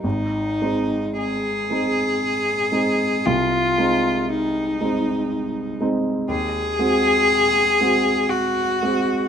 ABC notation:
X:1
M:3/4
L:1/8
Q:1/4=59
K:Ab
V:1 name="Cello"
E2 A4 | F2 E3 z | [K:Abmix] A4 G2 |]
V:2 name="Grand piano"
A,,, [A,CE]2 [A,CE]2 [A,CE] | C,, [A,CE]2 [A,CE]2 [A,CE] | [K:Abmix] E,, [A,CG]2 [A,CG]2 [A,CG] |]